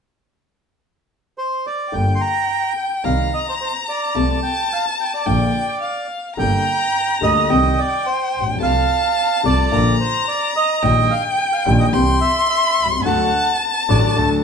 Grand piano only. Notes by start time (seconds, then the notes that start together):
1.92 G1 G2 D3 G3 A#3 G4
3.04 C2 C3 D#3 G3 C4 G4
4.15 C2 C3 F3 A3 F4
5.26 A#1 A#2 D3 F3 A#3 F4
6.37 G1 G2 D3 G3 A#3 G4
7.21 D2 D3 G3 A#3 G4
7.49 C2 C3 D#3 G3 C4 G4
8.40 A1
8.47 A#1
8.55 B1
8.60 C2 C3 F3 A3 F4
9.43 C2 C3 F3 A3 F4
9.72 A#1 A#2 D3 F3 A#3 F4
10.82 A#1 A#2 D#3 G3 A#3 G4
11.66 A#1 A#2 D#3 G3 A#3 G4
11.93 C2 C3 E3 G3 C4 G4
12.85 B1
12.92 C2
12.99 C#2
13.05 D2 D3 F#3 A3 F#4
13.89 A1 A2 D3 F#3 A3 F#4
14.16 D2 D3 F#3 A3 F#4